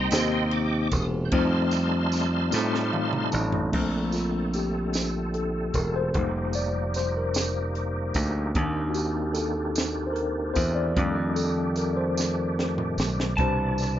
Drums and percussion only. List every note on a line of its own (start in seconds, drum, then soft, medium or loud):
0.11 snare loud
0.11 ride bell medium
0.11 tambourine medium
0.51 ride bell soft
0.91 kick medium
0.91 ride bell soft
0.91 tambourine medium
1.32 kick loud
1.32 ride bell medium
1.71 ride bell soft
1.71 tambourine medium
2.12 snare soft
2.12 ride bell soft
2.12 tambourine medium
2.52 snare medium
2.52 tambourine medium
2.75 snare medium
2.93 high tom medium
3.13 mid tom medium
3.32 mid tom medium
3.32 tambourine medium
3.52 floor tom loud
3.73 kick medium
3.73 crash medium
4.12 snare soft
4.12 closed hi-hat soft
4.12 tambourine soft
4.54 closed hi-hat medium
4.54 tambourine medium
4.93 snare medium
4.93 closed hi-hat medium
4.93 tambourine medium
5.34 closed hi-hat soft
5.74 kick medium
5.74 closed hi-hat medium
5.74 tambourine soft
6.14 kick medium
6.14 closed hi-hat medium
6.53 closed hi-hat soft
6.53 tambourine medium
6.94 snare soft
6.94 closed hi-hat medium
6.94 tambourine medium
7.34 snare medium
7.34 closed hi-hat medium
7.34 tambourine medium
7.75 closed hi-hat medium
8.14 kick medium
8.14 closed hi-hat medium
8.14 tambourine soft
8.55 kick medium
8.55 closed hi-hat medium
8.94 closed hi-hat medium
8.94 tambourine medium
9.35 closed hi-hat medium
9.35 tambourine medium
9.75 snare medium
9.75 closed hi-hat medium
9.75 tambourine medium
10.16 closed hi-hat soft
10.55 kick medium
10.55 closed hi-hat medium
10.55 tambourine medium
10.96 kick loud
10.96 closed hi-hat medium
11.36 closed hi-hat soft
11.36 tambourine medium
11.76 closed hi-hat medium
11.76 tambourine medium
12.17 snare medium
12.17 tambourine medium
12.59 snare medium
12.78 mid tom medium
12.98 snare medium
12.98 tambourine medium
13.20 snare medium
13.38 kick medium
13.38 closed hi-hat medium
13.78 snare soft
13.78 closed hi-hat soft
13.78 tambourine soft